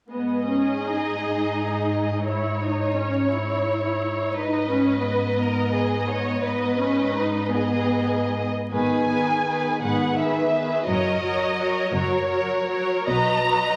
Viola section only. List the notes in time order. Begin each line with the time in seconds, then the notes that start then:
0.13 B3
0.50 C#4
0.86 D#4
2.28 E4
2.64 D#4
2.99 C#4
3.34 E4
4.37 D#4
4.72 C#4
5.06 B3
6.44 B3
6.80 C#4
7.15 D#4
7.52 B3
8.72 D#3 B3
9.10 D#3 B3
9.46 D#3 B3
9.81 D#3 B3
10.17 D#3 B3
10.52 D#3 B3
10.85 F#3 F#4
11.21 F#3 F#4
11.56 F#3 F#4
11.90 F#3 F#4
12.28 F#3 F#4
12.67 F#3 F#4
13.06 F#3 F#4
13.44 F#3 F#4